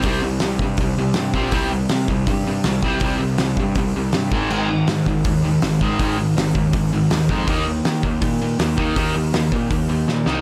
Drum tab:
CC |--------|--------|--------|x-------|
HH |o-o-o-o-|o-o-o-o-|o-o-o-o-|--o-o-o-|
SD |--o---o-|--o---o-|--o---o-|--o---o-|
BD |o--oo--o|o--oo--o|o--oo--o|---oo--o|

CC |--------|--------|--------|
HH |o-o-o-o-|o-o-o-o-|o-o-o---|
SD |--o---o-|--o---o-|--o---oo|
BD |o--oo--o|o--oo--o|o--oo---|